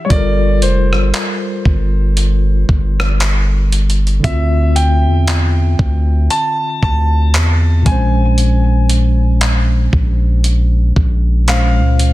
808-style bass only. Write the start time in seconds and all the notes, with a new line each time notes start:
0.10 G1
0.62 F1
0.92 G1
1.65 G1
2.69 G1
4.24 D2
5.06 E2
5.79 D2
6.83 D2
7.34 E2
7.86 A#1
9.93 A#1
10.96 A#1
11.78 C#2